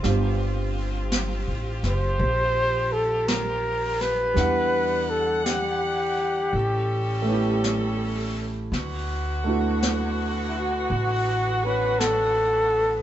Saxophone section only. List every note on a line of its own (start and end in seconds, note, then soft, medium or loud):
0.00 4.33 C4 medium
0.00 4.33 F4 medium
0.00 4.33 G4 medium
4.37 6.53 D3 medium
4.37 6.53 G3 medium
4.37 6.52 F#5 medium
6.54 8.56 G3 medium
6.54 8.56 C#4 medium
6.54 8.56 A4 medium
8.73 13.02 D3 medium
8.73 13.02 B3 medium
8.73 13.02 F#4 medium